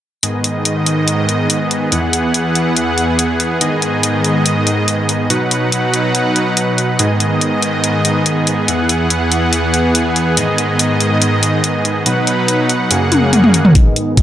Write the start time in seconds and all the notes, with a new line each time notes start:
0.23 G#2 D#3 B3 G#4 D#5, closed hi-hat
0.44 closed hi-hat
0.65 closed hi-hat
0.86 closed hi-hat
1.08 closed hi-hat
1.29 closed hi-hat
1.50 closed hi-hat
1.71 closed hi-hat
1.92 E2 E3 F#5, closed hi-hat
2.13 closed hi-hat
2.34 closed hi-hat
2.55 closed hi-hat
2.77 closed hi-hat
2.98 closed hi-hat
3.19 closed hi-hat
3.40 closed hi-hat
3.61 G#2 D#3 D#5, closed hi-hat
3.82 closed hi-hat
4.03 closed hi-hat
4.25 closed hi-hat
4.46 closed hi-hat
4.67 closed hi-hat
4.88 closed hi-hat
5.09 closed hi-hat
5.30 B2 F#3 D#4 B4 F#5, closed hi-hat
5.51 closed hi-hat
5.72 closed hi-hat
5.94 closed hi-hat
6.15 closed hi-hat
6.36 closed hi-hat
6.57 closed hi-hat
6.78 closed hi-hat
6.99 G#2 D#3 B3 G#4 D#5, closed hi-hat
7.20 closed hi-hat
7.41 closed hi-hat
7.62 closed hi-hat
7.84 closed hi-hat
8.05 closed hi-hat
8.26 closed hi-hat
8.47 closed hi-hat
8.68 E2 E3 F#5, closed hi-hat
8.89 closed hi-hat
9.10 closed hi-hat
9.32 closed hi-hat
9.53 closed hi-hat
9.74 closed hi-hat
9.95 closed hi-hat
10.16 closed hi-hat
10.37 G#2 D#3 D#5, closed hi-hat
10.58 closed hi-hat
10.79 closed hi-hat
11.01 closed hi-hat
11.22 closed hi-hat
11.43 closed hi-hat
11.64 closed hi-hat
11.85 closed hi-hat
12.06 B2 F#3 D#4 B4 F#5, closed hi-hat
12.27 closed hi-hat
12.48 closed hi-hat
12.69 closed hi-hat
12.91 F#2 C#3 A#3 G#4, closed hi-hat
13.12 closed hi-hat, high tom
13.33 closed hi-hat, mid tom
13.44 mid tom
13.54 closed hi-hat
13.65 mid tom
13.75 G#2 D#3 B3 G#4 D#5, kick, closed hi-hat
13.96 closed hi-hat
14.17 kick, closed hi-hat